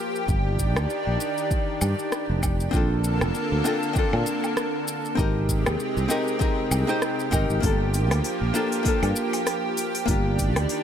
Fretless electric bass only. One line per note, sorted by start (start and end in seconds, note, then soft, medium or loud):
0.28 0.77 G1 medium
0.77 0.85 D2 medium
1.07 1.16 A#1 medium
1.82 1.93 G2 medium
2.30 2.66 F1 medium
2.73 3.23 A#1 medium
3.21 3.30 F1 medium
3.52 3.61 D2 medium
4.13 4.22 A#2 medium
5.18 5.68 G#1 loud
5.66 5.75 D#2 medium
5.97 6.06 C2 medium
6.71 6.83 C2 medium
7.33 7.44 G#1 medium
7.50 7.59 G#1 medium
7.63 8.11 G1 loud
8.11 8.20 D2 medium
8.42 8.51 A#1 medium
9.03 9.12 G2 medium
10.08 10.56 G1 medium
10.56 10.65 D2 medium